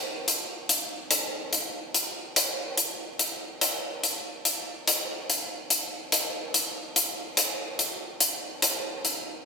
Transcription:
0.28 closed hi-hat
0.69 closed hi-hat
1.11 closed hi-hat
1.53 closed hi-hat
1.94 closed hi-hat
2.36 closed hi-hat
2.77 closed hi-hat
3.19 closed hi-hat
3.61 closed hi-hat
4.04 closed hi-hat
4.45 closed hi-hat
4.87 closed hi-hat
5.30 closed hi-hat
5.70 closed hi-hat
6.12 closed hi-hat
6.54 closed hi-hat
6.96 closed hi-hat
7.37 closed hi-hat
7.79 closed hi-hat
8.20 closed hi-hat
8.62 closed hi-hat
9.05 closed hi-hat

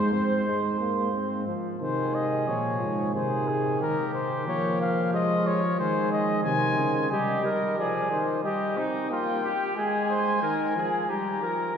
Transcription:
Already playing: G#2 G#3 C5
0.13 C4
0.46 G#3
0.80 A#3
1.13 C4
1.47 F3
1.80 C3 D#3 G#4 C5
2.15 D#5
2.47 A#2 F3 C#5
2.81 G#2
3.13 C3 D#3 G#4 C5
3.48 G#4
3.81 D#3 G4 A#4
4.14 C5
4.47 F3 A#3 C#5
4.81 F5
5.13 G#3 F4 D#5
5.47 C#5
5.79 D#3 G#3 G#4 C5
6.12 D#5
6.44 C3 D#3 C5 G#5
6.78 C#3
7.11 G3 G4 D#5
7.44 G3 A#4
7.77 F3 G#4 D5
8.11 D#3 C5
8.44 G3 G4 D#5
8.77 C4 D#4
9.11 A#3 F4 G5
9.44 G4
9.76 G#3 G#4 G#5
10.10 C5
10.42 D#3 A#4
10.76 F3 G#4
11.09 G3 G4 A#5
11.42 F3 A#4

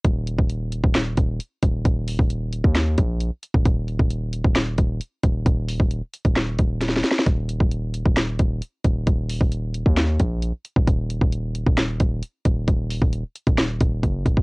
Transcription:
0.05 D#1, kick, closed hi-hat
0.27 closed hi-hat
0.38 D#1, kick
0.50 closed hi-hat
0.72 closed hi-hat
0.84 D#1, kick
0.95 cross-stick, snare, clap, closed hi-hat
1.17 D#1, kick, closed hi-hat
1.40 closed hi-hat
1.62 D#1, kick, closed hi-hat
1.85 D#1, kick, closed hi-hat
2.08 open hi-hat
2.19 D#1, kick
2.30 closed hi-hat
2.53 closed hi-hat
2.64 D#2, kick
2.75 cross-stick, snare, clap, closed hi-hat
2.98 A#1, kick, closed hi-hat
3.20 closed hi-hat
3.43 closed hi-hat
3.54 D#1, kick
3.65 D#1, kick, closed hi-hat
3.88 closed hi-hat
3.99 D#1, kick
4.10 closed hi-hat
4.33 closed hi-hat
4.45 D#1, kick
4.56 cross-stick, snare, clap, closed hi-hat
4.78 D#1, kick, closed hi-hat
5.01 closed hi-hat
5.23 D#1, kick, closed hi-hat
5.46 D#1, kick, closed hi-hat
5.69 open hi-hat
5.80 D#1, kick
5.91 closed hi-hat
6.14 closed hi-hat
6.25 D#1, kick, closed hi-hat
6.36 cross-stick, snare, clap, closed hi-hat
6.59 D#1, kick, closed hi-hat
6.81 snare, closed hi-hat
6.89 snare
6.96 snare
7.04 snare, closed hi-hat
7.11 snare
7.19 snare
7.26 D#1, kick, closed hi-hat
7.49 closed hi-hat
7.60 D#1, kick
7.71 closed hi-hat
7.94 closed hi-hat
8.05 D#1, kick
8.17 cross-stick, snare, clap, closed hi-hat
8.39 D#1, kick, closed hi-hat
8.62 closed hi-hat
8.84 D#1, kick, closed hi-hat
9.07 D#1, kick, closed hi-hat
9.29 open hi-hat
9.41 D#1, kick
9.52 closed hi-hat
9.74 closed hi-hat
9.86 D#2, kick
9.97 cross-stick, snare, clap, closed hi-hat
10.19 A#1, kick, closed hi-hat
10.42 closed hi-hat
10.65 closed hi-hat
10.76 D#1, kick
10.87 D#1, kick, closed hi-hat
11.10 closed hi-hat
11.21 D#1, kick
11.32 closed hi-hat
11.55 closed hi-hat
11.66 D#1, kick
11.78 cross-stick, snare, clap, closed hi-hat
12.00 D#1, kick, closed hi-hat
12.23 closed hi-hat
12.45 D#1, kick, closed hi-hat
12.68 D#1, kick, closed hi-hat
12.90 open hi-hat
13.02 D#1, kick
13.13 closed hi-hat
13.35 closed hi-hat
13.47 D#1, kick, closed hi-hat
13.58 cross-stick, snare, clap, closed hi-hat
13.80 D#1, kick, closed hi-hat
14.03 F#1, kick, closed hi-hat
14.26 D#1, kick, closed hi-hat
14.37 kick

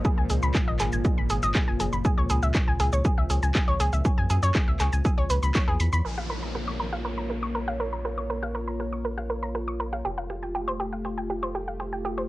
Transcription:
Already playing: A#2 F3
0.05 G#4, kick, shaker
0.18 C#2 G#5
0.30 C#2 G#4, open hi-hat, shaker
0.43 C#2 B5, shaker
0.55 G#4, kick, clap, shaker
0.68 G#1 D#5
0.80 G#1 G#4, clap, open hi-hat, shaker
0.93 G#1 G#5, shaker
1.05 G#4, kick, shaker
1.18 G#1 B5
1.30 G#1 G#4, open hi-hat, shaker
1.43 G#1 D#5, shaker
1.55 G#4, kick, clap, shaker
1.68 F#1 G#5
1.80 F#1 G#4, open hi-hat, shaker
1.93 F#1 B5, shaker
2.05 G#4, kick, shaker
2.18 C#2 C#5
2.30 C#2 G#4, open hi-hat, shaker
2.43 C#2 E5, shaker
2.55 G#4, kick, clap, shaker
2.68 C#2 G#5
2.80 C#2 G#4, open hi-hat, shaker
2.93 C#2 C#5, shaker
3.05 G#4, kick, shaker
3.18 C#2 E5
3.30 C#2 G#4, open hi-hat, shaker
3.43 C#2 G#5, shaker
3.55 G#4, kick, clap, shaker
3.68 C#2 C#5
3.80 C#2 G#4, open hi-hat, shaker
3.93 C#2 E5, shaker
4.05 G#4, kick, shaker
4.18 F#2 G#5
4.30 F#2 G#4, open hi-hat, shaker
4.43 F#2 C#5, shaker
4.55 G#4, kick, clap, shaker
4.68 C#2 E5
4.80 C#2 G#4, clap, open hi-hat, shaker
4.93 C#2 G#5, shaker
5.05 G#4, kick, shaker
5.18 C#2 C#5
5.30 C#2 B4, open hi-hat, shaker
5.43 C#2 B5, shaker
5.55 C#5, kick, clap, shaker
5.68 E2 G#4
5.80 E2 B5, open hi-hat, shaker
5.93 E2 B5, shaker
6.05 A#1 A#3 F4 A#4 C#5, crash, downlifter
6.18 F5, cross-stick
6.30 A#4
6.43 A#5
6.55 A#4, cross-stick
6.68 C#6
6.80 A#4
6.93 F5, cross-stick
7.05 A#4
7.18 A#5
7.30 A#4, cross-stick
7.43 C#6
7.55 A#4
7.68 F5, cross-stick
7.80 A#4
7.93 A#5
8.05 A#4, cross-stick
8.18 C#6
8.30 A#4
8.43 F5, cross-stick
8.55 A#4
8.68 A#5
8.80 A#4, cross-stick
8.93 C#6
9.05 A#4
9.18 F5, cross-stick
9.30 A#4
9.43 A#5
9.55 A#4, cross-stick
9.68 C#6
9.80 A#4
9.93 F5, cross-stick
10.05 F1 A3 G4
10.18 F5
10.30 G4, cross-stick
10.43 G5
10.55 G4
10.68 C5, cross-stick
10.80 G4
10.93 F5
11.05 G4, cross-stick
11.18 G5
11.30 G4
11.43 C5, cross-stick
11.55 G4
11.68 F5
11.80 G4, cross-stick
11.93 G5
12.05 G4
12.18 C5, cross-stick

